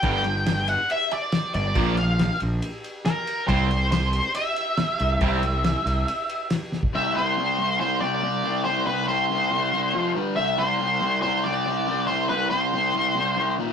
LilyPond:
<<
  \new Staff \with { instrumentName = "Lead electric guitar" } { \time 4/4 \key c \lydian \tempo 4 = 140 g''4. fis''8 e''8 d''4 d''8~ | d''8 f''4 r4. bes'4 | c''4 c''4 e''2~ | e''2. r4 |
e''8 c''4. c''8 d''4. | c''8 b'8 c''2~ c''8 r8 | e''8 c''4. c''8 d''4. | c''8 b'8 c''2~ c''8 r8 | }
  \new Staff \with { instrumentName = "Overdriven electric guitar" } { \clef bass \time 4/4 \key c \lydian <g, d g>8 r2. r8 | <bes, f bes>8 r2. r8 | <c g c'>8 r2. r8 | <c g c'>8 r2. r8 |
<c g c'>8 <c g c'>8 <c g c'>8 <c g c'>8 <c g c'>8 <c g c'>8 <c g c'>8 <c g c'>8 | <c g c'>8 <c g c'>8 <c g c'>8 <c g c'>8 <c g c'>8 <c g c'>8 <f, c f>8 <g, d g>8 | <c g c'>8 <c g c'>8 <c g c'>8 <c g c'>8 <c g c'>8 <c g c'>8 <c g c'>8 <c g c'>8 | <c g c'>8 <c g c'>8 <c g c'>8 <c g c'>8 <c g c'>8 <c g c'>8 <c g c'>8 <ees, bes, ees>8 | }
  \new Staff \with { instrumentName = "Distorted electric guitar" } { \clef bass \time 4/4 \key c \lydian <g, d g>8 r2. r8 | <bes, f bes>8 r2. r8 | <c g c'>8 r2. r8 | <c g c'>8 r2. r8 |
r1 | r1 | r1 | r1 | }
  \new Staff \with { instrumentName = "Fingered electric bass" } { \clef bass \time 4/4 \key c \lydian g,,2 r4. g,,8 | bes,,4. bes,,8 r2 | c,2 r4. c,8 | c,4. c,8 r2 |
r1 | r1 | r1 | r1 | }
  \new DrumStaff \with { instrumentName = "Drums" } \drummode { \time 4/4 <bd cymr>8 cymr8 <cymr sn>8 cymr8 cymr8 cymr8 <cymr sn>8 cymr8 | <bd cymr>8 cymr8 <cymr sn>8 cymr8 cymr8 cymr8 <cymr sn>8 cymr8 | <bd cymr>8 cymr8 <cymr sn>8 cymr8 cymr8 cymr8 <cymr sn>8 cymr8 | <bd cymr>8 cymr8 <cymr sn>8 cymr8 cymr8 cymr8 <cymr sn>8 sn16 bd16 |
r4 r4 r4 r4 | r4 r4 r4 r4 | r4 r4 r4 r4 | r4 r4 r4 r4 | }
>>